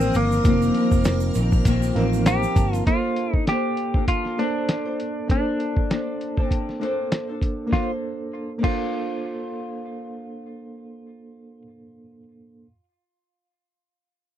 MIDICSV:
0, 0, Header, 1, 7, 480
1, 0, Start_track
1, 0, Key_signature, -2, "major"
1, 0, Tempo, 606673
1, 356, Time_signature, 4, 2, 24, 8
1, 11375, End_track
2, 0, Start_track
2, 0, Title_t, "String machine"
2, 0, Program_c, 0, 50
2, 0, Note_on_c, 0, 70, 82
2, 0, Note_on_c, 0, 77, 79
2, 0, Note_on_c, 0, 84, 91
2, 0, Note_on_c, 0, 87, 94
2, 338, Note_off_c, 0, 87, 0
2, 355, Note_on_c, 0, 89, 94
2, 2236, Note_off_c, 0, 84, 0
2, 2238, Note_off_c, 0, 77, 0
2, 2239, Note_off_c, 0, 70, 0
2, 2250, Note_off_c, 0, 89, 0
2, 11375, End_track
3, 0, Start_track
3, 0, Title_t, "Clean electric guitar"
3, 0, Program_c, 1, 27
3, 0, Note_on_c, 1, 60, 91
3, 130, Note_on_c, 1, 58, 88
3, 132, Note_off_c, 1, 60, 0
3, 1766, Note_off_c, 1, 58, 0
3, 1798, Note_on_c, 1, 67, 99
3, 2178, Note_off_c, 1, 67, 0
3, 2178, Note_on_c, 1, 65, 99
3, 2269, Note_off_c, 1, 65, 0
3, 2272, Note_on_c, 1, 65, 90
3, 2652, Note_off_c, 1, 65, 0
3, 2652, Note_on_c, 1, 63, 90
3, 2756, Note_off_c, 1, 63, 0
3, 2759, Note_on_c, 1, 67, 84
3, 3228, Note_off_c, 1, 67, 0
3, 3231, Note_on_c, 1, 65, 89
3, 3474, Note_on_c, 1, 62, 82
3, 3477, Note_off_c, 1, 65, 0
3, 4194, Note_off_c, 1, 62, 0
3, 4203, Note_on_c, 1, 62, 68
3, 5121, Note_off_c, 1, 62, 0
3, 5121, Note_on_c, 1, 60, 68
3, 5606, Note_off_c, 1, 60, 0
3, 6113, Note_on_c, 1, 65, 71
3, 6255, Note_off_c, 1, 65, 0
3, 6835, Note_on_c, 1, 65, 67
3, 9191, Note_off_c, 1, 65, 0
3, 11375, End_track
4, 0, Start_track
4, 0, Title_t, "Reed electric piano"
4, 0, Program_c, 2, 4
4, 0, Control_c, 2, 64, 127
4, 0, Note_on_c, 2, 51, 69
4, 0, Note_on_c, 2, 53, 74
4, 0, Note_on_c, 2, 58, 65
4, 0, Note_on_c, 2, 60, 67
4, 0, Note_on_c, 2, 63, 67
4, 0, Note_on_c, 2, 70, 78
4, 107, Note_off_c, 2, 53, 0
4, 108, Note_off_c, 2, 58, 0
4, 110, Note_off_c, 2, 60, 0
4, 113, Note_off_c, 2, 51, 0
4, 116, Note_off_c, 2, 70, 0
4, 346, Note_on_c, 2, 53, 73
4, 349, Note_on_c, 2, 58, 68
4, 354, Note_on_c, 2, 60, 67
4, 358, Note_off_c, 2, 63, 0
4, 358, Note_on_c, 2, 63, 69
4, 364, Note_on_c, 2, 65, 83
4, 989, Note_off_c, 2, 53, 0
4, 990, Note_off_c, 2, 58, 0
4, 993, Note_off_c, 2, 60, 0
4, 995, Note_off_c, 2, 63, 0
4, 998, Note_off_c, 2, 65, 0
4, 1538, Note_on_c, 2, 53, 85
4, 1545, Note_on_c, 2, 58, 79
4, 1546, Note_on_c, 2, 77, 68
4, 1547, Note_on_c, 2, 60, 81
4, 1551, Note_on_c, 2, 63, 78
4, 1559, Note_on_c, 2, 70, 91
4, 1771, Note_off_c, 2, 77, 0
4, 1790, Note_on_c, 2, 82, 71
4, 2013, Note_off_c, 2, 82, 0
4, 2018, Note_off_c, 2, 53, 0
4, 2021, Note_off_c, 2, 58, 0
4, 2022, Note_off_c, 2, 60, 0
4, 2025, Note_off_c, 2, 63, 0
4, 2027, Note_on_c, 2, 81, 68
4, 2028, Note_off_c, 2, 70, 0
4, 2251, Note_off_c, 2, 81, 0
4, 2254, Note_on_c, 2, 58, 64
4, 2263, Note_on_c, 2, 62, 58
4, 2269, Note_on_c, 2, 69, 59
4, 2278, Note_on_c, 2, 72, 73
4, 2280, Control_c, 2, 64, 0
4, 2410, Control_c, 2, 64, 127
4, 2901, Note_off_c, 2, 58, 0
4, 2906, Note_off_c, 2, 62, 0
4, 2909, Note_off_c, 2, 69, 0
4, 2914, Note_off_c, 2, 72, 0
4, 3454, Note_on_c, 2, 58, 61
4, 3460, Note_on_c, 2, 62, 60
4, 3467, Note_on_c, 2, 69, 62
4, 3473, Note_on_c, 2, 72, 70
4, 3935, Note_off_c, 2, 58, 0
4, 3938, Note_off_c, 2, 62, 0
4, 3942, Note_off_c, 2, 69, 0
4, 3945, Note_off_c, 2, 72, 0
4, 4171, Note_on_c, 2, 58, 61
4, 4176, Note_on_c, 2, 62, 57
4, 4185, Note_on_c, 2, 69, 57
4, 4193, Note_on_c, 2, 72, 69
4, 4821, Note_off_c, 2, 58, 0
4, 4823, Note_off_c, 2, 62, 0
4, 4827, Note_off_c, 2, 69, 0
4, 4831, Note_off_c, 2, 72, 0
4, 5377, Note_on_c, 2, 58, 74
4, 5384, Note_on_c, 2, 62, 64
4, 5392, Note_on_c, 2, 69, 66
4, 5400, Note_on_c, 2, 72, 78
4, 5858, Note_off_c, 2, 58, 0
4, 5862, Note_off_c, 2, 62, 0
4, 5866, Note_off_c, 2, 69, 0
4, 5870, Note_off_c, 2, 72, 0
4, 6064, Note_on_c, 2, 58, 66
4, 6090, Note_on_c, 2, 62, 59
4, 6120, Note_on_c, 2, 69, 58
4, 6121, Control_c, 2, 64, 0
4, 6142, Note_on_c, 2, 72, 73
4, 6229, Note_off_c, 2, 58, 0
4, 6242, Control_c, 2, 64, 127
4, 6243, Note_off_c, 2, 62, 0
4, 6259, Note_off_c, 2, 69, 0
4, 6271, Note_off_c, 2, 72, 0
4, 6788, Note_on_c, 2, 58, 67
4, 6815, Note_on_c, 2, 62, 58
4, 6840, Note_on_c, 2, 69, 63
4, 6865, Note_on_c, 2, 72, 76
4, 9168, Note_off_c, 2, 58, 0
4, 9181, Note_off_c, 2, 62, 0
4, 9194, Note_off_c, 2, 69, 0
4, 9206, Note_off_c, 2, 72, 0
4, 10024, Control_c, 2, 64, 0
4, 11375, End_track
5, 0, Start_track
5, 0, Title_t, "Nylon-string guitar"
5, 0, Program_c, 3, 24
5, 5, Note_on_c, 3, 60, 54
5, 19, Note_on_c, 3, 58, 52
5, 33, Note_on_c, 3, 51, 43
5, 348, Note_off_c, 3, 51, 0
5, 350, Note_on_c, 3, 41, 80
5, 354, Note_off_c, 3, 58, 0
5, 354, Note_off_c, 3, 60, 0
5, 357, Note_on_c, 3, 51, 83
5, 364, Note_on_c, 3, 58, 86
5, 368, Note_on_c, 3, 60, 86
5, 576, Note_off_c, 3, 41, 0
5, 585, Note_on_c, 3, 41, 67
5, 587, Note_off_c, 3, 51, 0
5, 596, Note_off_c, 3, 58, 0
5, 597, Note_on_c, 3, 51, 63
5, 601, Note_off_c, 3, 60, 0
5, 606, Note_on_c, 3, 58, 70
5, 612, Note_on_c, 3, 60, 70
5, 1057, Note_off_c, 3, 41, 0
5, 1067, Note_on_c, 3, 41, 68
5, 1068, Note_off_c, 3, 51, 0
5, 1078, Note_on_c, 3, 51, 75
5, 1081, Note_off_c, 3, 58, 0
5, 1084, Note_on_c, 3, 58, 74
5, 1092, Note_off_c, 3, 60, 0
5, 1095, Note_on_c, 3, 60, 76
5, 1297, Note_off_c, 3, 41, 0
5, 1305, Note_off_c, 3, 51, 0
5, 1307, Note_on_c, 3, 41, 91
5, 1309, Note_off_c, 3, 58, 0
5, 1315, Note_on_c, 3, 51, 100
5, 1317, Note_off_c, 3, 60, 0
5, 1319, Note_on_c, 3, 58, 99
5, 1327, Note_on_c, 3, 60, 107
5, 1542, Note_off_c, 3, 41, 0
5, 1548, Note_off_c, 3, 51, 0
5, 1551, Note_on_c, 3, 41, 96
5, 1555, Note_off_c, 3, 58, 0
5, 1557, Note_on_c, 3, 51, 88
5, 1559, Note_off_c, 3, 60, 0
5, 1564, Note_on_c, 3, 58, 98
5, 1570, Note_on_c, 3, 60, 106
5, 1913, Note_off_c, 3, 60, 0
5, 1922, Note_on_c, 3, 60, 65
5, 1923, Note_off_c, 3, 41, 0
5, 1925, Note_off_c, 3, 51, 0
5, 1927, Note_off_c, 3, 58, 0
5, 1936, Note_on_c, 3, 58, 54
5, 1950, Note_on_c, 3, 51, 51
5, 2252, Note_off_c, 3, 58, 0
5, 2258, Note_off_c, 3, 51, 0
5, 2262, Note_on_c, 3, 58, 57
5, 2269, Note_on_c, 3, 62, 59
5, 2270, Note_off_c, 3, 60, 0
5, 2279, Note_on_c, 3, 69, 61
5, 2286, Note_on_c, 3, 72, 59
5, 2746, Note_off_c, 3, 58, 0
5, 2749, Note_on_c, 3, 58, 51
5, 2755, Note_off_c, 3, 62, 0
5, 2758, Note_on_c, 3, 62, 53
5, 2765, Note_off_c, 3, 69, 0
5, 2768, Note_on_c, 3, 69, 55
5, 2772, Note_off_c, 3, 72, 0
5, 2776, Note_on_c, 3, 72, 64
5, 3107, Note_off_c, 3, 72, 0
5, 3116, Note_off_c, 3, 69, 0
5, 3117, Note_on_c, 3, 72, 57
5, 3121, Note_off_c, 3, 58, 0
5, 3125, Note_off_c, 3, 62, 0
5, 3126, Note_on_c, 3, 69, 57
5, 3134, Note_on_c, 3, 62, 51
5, 3138, Note_on_c, 3, 58, 49
5, 3458, Note_off_c, 3, 58, 0
5, 3467, Note_off_c, 3, 72, 0
5, 3468, Note_on_c, 3, 58, 73
5, 3469, Note_off_c, 3, 62, 0
5, 3471, Note_off_c, 3, 69, 0
5, 3478, Note_on_c, 3, 62, 77
5, 3483, Note_on_c, 3, 69, 83
5, 3488, Note_on_c, 3, 72, 86
5, 3830, Note_off_c, 3, 72, 0
5, 3840, Note_off_c, 3, 58, 0
5, 3840, Note_on_c, 3, 72, 52
5, 3842, Note_off_c, 3, 69, 0
5, 3845, Note_off_c, 3, 62, 0
5, 3851, Note_on_c, 3, 69, 42
5, 3865, Note_on_c, 3, 62, 38
5, 4178, Note_off_c, 3, 62, 0
5, 4179, Note_on_c, 3, 58, 50
5, 4188, Note_off_c, 3, 72, 0
5, 4188, Note_on_c, 3, 62, 51
5, 4189, Note_off_c, 3, 69, 0
5, 4199, Note_on_c, 3, 69, 56
5, 4206, Note_on_c, 3, 72, 58
5, 4662, Note_off_c, 3, 58, 0
5, 4665, Note_on_c, 3, 58, 53
5, 4672, Note_off_c, 3, 62, 0
5, 4675, Note_on_c, 3, 62, 56
5, 4680, Note_off_c, 3, 69, 0
5, 4683, Note_on_c, 3, 69, 54
5, 4687, Note_off_c, 3, 72, 0
5, 4690, Note_on_c, 3, 72, 57
5, 5028, Note_off_c, 3, 72, 0
5, 5033, Note_off_c, 3, 69, 0
5, 5038, Note_off_c, 3, 62, 0
5, 5038, Note_on_c, 3, 72, 63
5, 5039, Note_off_c, 3, 58, 0
5, 5043, Note_on_c, 3, 69, 63
5, 5048, Note_on_c, 3, 62, 59
5, 5055, Note_on_c, 3, 58, 53
5, 5377, Note_off_c, 3, 58, 0
5, 5382, Note_off_c, 3, 62, 0
5, 5387, Note_on_c, 3, 58, 81
5, 5388, Note_off_c, 3, 69, 0
5, 5388, Note_off_c, 3, 72, 0
5, 5391, Note_on_c, 3, 62, 82
5, 5398, Note_on_c, 3, 69, 76
5, 5405, Note_on_c, 3, 72, 80
5, 5746, Note_off_c, 3, 72, 0
5, 5756, Note_on_c, 3, 72, 47
5, 5761, Note_off_c, 3, 58, 0
5, 5761, Note_off_c, 3, 69, 0
5, 5763, Note_off_c, 3, 62, 0
5, 5771, Note_on_c, 3, 69, 49
5, 5782, Note_on_c, 3, 62, 43
5, 6070, Note_on_c, 3, 58, 63
5, 6105, Note_off_c, 3, 62, 0
5, 6108, Note_off_c, 3, 72, 0
5, 6115, Note_off_c, 3, 69, 0
5, 6115, Note_on_c, 3, 62, 69
5, 6155, Note_on_c, 3, 69, 64
5, 6194, Note_on_c, 3, 72, 73
5, 6702, Note_off_c, 3, 58, 0
5, 6702, Note_off_c, 3, 62, 0
5, 6702, Note_off_c, 3, 69, 0
5, 6702, Note_off_c, 3, 72, 0
5, 6794, Note_on_c, 3, 58, 67
5, 6842, Note_on_c, 3, 62, 72
5, 6882, Note_on_c, 3, 69, 69
5, 6921, Note_on_c, 3, 72, 74
5, 9563, Note_off_c, 3, 58, 0
5, 9611, Note_off_c, 3, 62, 0
5, 9651, Note_off_c, 3, 69, 0
5, 9661, Note_off_c, 3, 72, 0
5, 11375, End_track
6, 0, Start_track
6, 0, Title_t, "Picked electric bass"
6, 0, Program_c, 4, 34
6, 119, Note_on_c, 4, 31, 89
6, 310, Note_off_c, 4, 31, 0
6, 356, Note_on_c, 4, 29, 108
6, 548, Note_off_c, 4, 29, 0
6, 726, Note_on_c, 4, 29, 96
6, 813, Note_off_c, 4, 29, 0
6, 834, Note_on_c, 4, 29, 98
6, 1025, Note_off_c, 4, 29, 0
6, 1075, Note_on_c, 4, 34, 93
6, 1266, Note_off_c, 4, 34, 0
6, 1308, Note_on_c, 4, 34, 97
6, 1501, Note_off_c, 4, 34, 0
6, 1549, Note_on_c, 4, 33, 83
6, 1933, Note_off_c, 4, 33, 0
6, 2025, Note_on_c, 4, 31, 88
6, 2219, Note_off_c, 4, 31, 0
6, 11375, End_track
7, 0, Start_track
7, 0, Title_t, "Drums"
7, 4, Note_on_c, 9, 82, 53
7, 83, Note_off_c, 9, 82, 0
7, 106, Note_on_c, 9, 82, 50
7, 119, Note_on_c, 9, 42, 75
7, 185, Note_off_c, 9, 82, 0
7, 198, Note_off_c, 9, 42, 0
7, 250, Note_on_c, 9, 82, 45
7, 329, Note_off_c, 9, 82, 0
7, 351, Note_on_c, 9, 82, 67
7, 355, Note_on_c, 9, 36, 117
7, 355, Note_on_c, 9, 42, 91
7, 430, Note_off_c, 9, 82, 0
7, 434, Note_off_c, 9, 36, 0
7, 434, Note_off_c, 9, 42, 0
7, 490, Note_on_c, 9, 82, 46
7, 570, Note_off_c, 9, 82, 0
7, 589, Note_on_c, 9, 42, 67
7, 668, Note_off_c, 9, 42, 0
7, 724, Note_on_c, 9, 36, 100
7, 725, Note_on_c, 9, 82, 45
7, 803, Note_off_c, 9, 36, 0
7, 804, Note_off_c, 9, 82, 0
7, 824, Note_on_c, 9, 82, 62
7, 832, Note_on_c, 9, 42, 91
7, 834, Note_on_c, 9, 38, 105
7, 903, Note_off_c, 9, 82, 0
7, 911, Note_off_c, 9, 42, 0
7, 913, Note_off_c, 9, 38, 0
7, 951, Note_on_c, 9, 82, 51
7, 1030, Note_off_c, 9, 82, 0
7, 1061, Note_on_c, 9, 82, 58
7, 1073, Note_on_c, 9, 42, 63
7, 1141, Note_off_c, 9, 82, 0
7, 1152, Note_off_c, 9, 42, 0
7, 1203, Note_on_c, 9, 82, 49
7, 1205, Note_on_c, 9, 36, 88
7, 1282, Note_off_c, 9, 82, 0
7, 1284, Note_off_c, 9, 36, 0
7, 1307, Note_on_c, 9, 42, 97
7, 1308, Note_on_c, 9, 36, 85
7, 1311, Note_on_c, 9, 82, 70
7, 1386, Note_off_c, 9, 42, 0
7, 1387, Note_off_c, 9, 36, 0
7, 1390, Note_off_c, 9, 82, 0
7, 1444, Note_on_c, 9, 82, 50
7, 1445, Note_on_c, 9, 38, 34
7, 1523, Note_off_c, 9, 82, 0
7, 1524, Note_off_c, 9, 38, 0
7, 1552, Note_on_c, 9, 42, 59
7, 1631, Note_off_c, 9, 42, 0
7, 1688, Note_on_c, 9, 82, 48
7, 1767, Note_off_c, 9, 82, 0
7, 1788, Note_on_c, 9, 42, 96
7, 1790, Note_on_c, 9, 38, 119
7, 1790, Note_on_c, 9, 82, 69
7, 1867, Note_off_c, 9, 42, 0
7, 1869, Note_off_c, 9, 38, 0
7, 1869, Note_off_c, 9, 82, 0
7, 1923, Note_on_c, 9, 82, 50
7, 2002, Note_off_c, 9, 82, 0
7, 2025, Note_on_c, 9, 36, 90
7, 2027, Note_on_c, 9, 82, 49
7, 2028, Note_on_c, 9, 42, 75
7, 2104, Note_off_c, 9, 36, 0
7, 2106, Note_off_c, 9, 82, 0
7, 2108, Note_off_c, 9, 42, 0
7, 2161, Note_on_c, 9, 42, 53
7, 2169, Note_on_c, 9, 82, 46
7, 2240, Note_off_c, 9, 42, 0
7, 2249, Note_off_c, 9, 82, 0
7, 2268, Note_on_c, 9, 36, 102
7, 2269, Note_on_c, 9, 42, 84
7, 2347, Note_off_c, 9, 36, 0
7, 2348, Note_off_c, 9, 42, 0
7, 2504, Note_on_c, 9, 42, 55
7, 2583, Note_off_c, 9, 42, 0
7, 2639, Note_on_c, 9, 36, 82
7, 2718, Note_off_c, 9, 36, 0
7, 2747, Note_on_c, 9, 42, 74
7, 2749, Note_on_c, 9, 38, 101
7, 2826, Note_off_c, 9, 42, 0
7, 2828, Note_off_c, 9, 38, 0
7, 2983, Note_on_c, 9, 42, 58
7, 3062, Note_off_c, 9, 42, 0
7, 3119, Note_on_c, 9, 36, 82
7, 3198, Note_off_c, 9, 36, 0
7, 3225, Note_on_c, 9, 36, 69
7, 3227, Note_on_c, 9, 42, 85
7, 3304, Note_off_c, 9, 36, 0
7, 3306, Note_off_c, 9, 42, 0
7, 3364, Note_on_c, 9, 38, 28
7, 3443, Note_off_c, 9, 38, 0
7, 3475, Note_on_c, 9, 42, 55
7, 3554, Note_off_c, 9, 42, 0
7, 3708, Note_on_c, 9, 42, 79
7, 3710, Note_on_c, 9, 38, 100
7, 3787, Note_off_c, 9, 42, 0
7, 3789, Note_off_c, 9, 38, 0
7, 3954, Note_on_c, 9, 42, 69
7, 4033, Note_off_c, 9, 42, 0
7, 4189, Note_on_c, 9, 36, 100
7, 4192, Note_on_c, 9, 42, 77
7, 4268, Note_off_c, 9, 36, 0
7, 4271, Note_off_c, 9, 42, 0
7, 4430, Note_on_c, 9, 42, 55
7, 4509, Note_off_c, 9, 42, 0
7, 4562, Note_on_c, 9, 36, 84
7, 4641, Note_off_c, 9, 36, 0
7, 4674, Note_on_c, 9, 42, 77
7, 4676, Note_on_c, 9, 38, 93
7, 4753, Note_off_c, 9, 42, 0
7, 4755, Note_off_c, 9, 38, 0
7, 4914, Note_on_c, 9, 42, 52
7, 4993, Note_off_c, 9, 42, 0
7, 5044, Note_on_c, 9, 36, 77
7, 5123, Note_off_c, 9, 36, 0
7, 5149, Note_on_c, 9, 36, 70
7, 5156, Note_on_c, 9, 42, 79
7, 5228, Note_off_c, 9, 36, 0
7, 5235, Note_off_c, 9, 42, 0
7, 5294, Note_on_c, 9, 38, 30
7, 5373, Note_off_c, 9, 38, 0
7, 5403, Note_on_c, 9, 42, 51
7, 5483, Note_off_c, 9, 42, 0
7, 5632, Note_on_c, 9, 42, 78
7, 5634, Note_on_c, 9, 38, 94
7, 5711, Note_off_c, 9, 42, 0
7, 5713, Note_off_c, 9, 38, 0
7, 5867, Note_on_c, 9, 36, 71
7, 5874, Note_on_c, 9, 42, 58
7, 5946, Note_off_c, 9, 36, 0
7, 5953, Note_off_c, 9, 42, 0
7, 6111, Note_on_c, 9, 36, 81
7, 6118, Note_on_c, 9, 38, 67
7, 6190, Note_off_c, 9, 36, 0
7, 6197, Note_off_c, 9, 38, 0
7, 6833, Note_on_c, 9, 36, 87
7, 6835, Note_on_c, 9, 49, 71
7, 6912, Note_off_c, 9, 36, 0
7, 6914, Note_off_c, 9, 49, 0
7, 11375, End_track
0, 0, End_of_file